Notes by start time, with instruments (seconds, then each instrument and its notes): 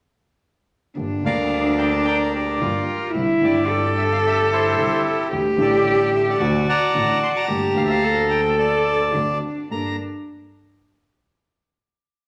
0.96 double bass G1, grand piano G1 G2 D3 G3 A#3 G4, cello D4
1.24 double bass D2, grand piano D2 D3 G3 A#3 G4, bandoneon A#4 D5 F5
1.78 bandoneon G5
1.91 bandoneon A5
2.05 bandoneon A#4 D5 G5
2.33 bandoneon G4 A#4 D5
2.61 double bass G1, grand piano G1 G2 D3 G3 A#3 G4, cello F4
3.13 double bass C2, grand piano C2 C3 D3 G3 C4 E4, cello E4
3.41 double bass G1, grand piano G1 G2 D3 G3 C4 E4, bandoneon D5
3.45 bandoneon G4
3.68 cello A4
3.98 bandoneon E5
4.12 bandoneon F5
4.26 bandoneon G4 E5
4.52 bandoneon E4 G4 C5
4.76 double bass C2, grand piano C2 C3 D3 G3 C4 E4
5.30 double bass D2, grand piano D2 D3 G3 A3 G4, cello G4
5.57 double bass A1, grand piano A1 A2 D3 G3 A3
5.61 grand piano G4, bandoneon G4 A4 D5
6.15 bandoneon E5
6.29 bandoneon D5 F#5 A5
6.39 double bass D2, grand piano D2 D3 F#3 A3 F#4, cello F#4
6.69 bandoneon D5 F#5 A#5
6.93 double bass A1, grand piano A1 A2 D3 F#3 A3 F#4, cello F#4
7.23 bandoneon C6
7.36 bandoneon A5 A#5 D6
7.48 double bass G1, grand piano G1 G2 D3 A3 A#3 G4, cello G4
7.72 grand piano D2 D3 A3 A#3, double bass D2
7.76 grand piano G4, bandoneon F5
7.85 bandoneon E5
7.90 bandoneon F5
8.03 cello A4
8.30 bandoneon G5
8.58 bandoneon D5 A5
9.13 double bass D2, grand piano D2 D3 A3 C4 F#4, cello D4
9.70 double bass G1, grand piano G2 A#3 G4 A4, cello D4, bandoneon A#5